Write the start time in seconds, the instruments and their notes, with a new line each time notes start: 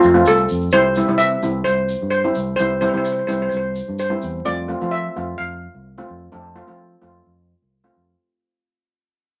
0.02 fingered electric bass F2, steel pan F4, shaker
0.14 steel pan A3 C4 F4
0.26 fingered electric bass C2, steel pan A4, shaker
0.37 shaker
0.49 fingered electric bass F2, shaker
0.61 shaker
0.72 fingered electric bass C2, steel pan G3 C4 E4 C5, shaker
0.95 steel pan G3 C4 E4, shaker
1.08 fingered electric bass C3, steel pan G3 C4 E4
1.18 steel pan E5, shaker
1.43 fingered electric bass C2, steel pan G3 C4 E4, shaker
1.64 fingered electric bass C2, steel pan C5, shaker
1.89 shaker
2.02 fingered electric bass G2
2.10 steel pan C5, shaker
2.24 steel pan G3 C4 E4
2.35 fingered electric bass C2, shaker
2.56 fingered electric bass C2, steel pan G3 C4 E4 C5, shaker
2.81 steel pan G3 C4 E4 C5, shaker
2.89 steel pan C5
2.94 fingered electric bass C3, steel pan G3 C4 E4 C5
3.05 steel pan C5, shaker
3.12 steel pan C5
3.19 steel pan C5
3.27 fingered electric bass C2, steel pan G3 C4 E4 C5, shaker
3.33 steel pan C5
3.42 steel pan C5
3.49 fingered electric bass C2, steel pan C5, shaker
3.57 steel pan C5
3.75 shaker
3.88 fingered electric bass G2
3.99 steel pan C5, shaker
4.09 steel pan G3 C4 E4
4.22 fingered electric bass E2, shaker
4.45 fingered electric bass F2, steel pan A3 C4 F4 D5
4.68 steel pan A3 C4 F4
4.81 fingered electric bass F3, steel pan A3 C4 F4
4.91 steel pan E5
5.16 fingered electric bass F2, steel pan A3 C4 F4
5.38 fingered electric bass F2, steel pan F5
5.75 fingered electric bass C2
5.98 steel pan A3 C4 F4
6.10 fingered electric bass F2
6.32 fingered electric bass F2, steel pan A3 C4 D4
6.56 steel pan A3 C4 F4
6.67 fingered electric bass F3, steel pan A3 C4 F4
7.01 fingered electric bass F2, steel pan A3 C4 F4
7.26 fingered electric bass F2
7.62 fingered electric bass C2
7.84 steel pan A3 C4 F4
7.96 fingered electric bass F2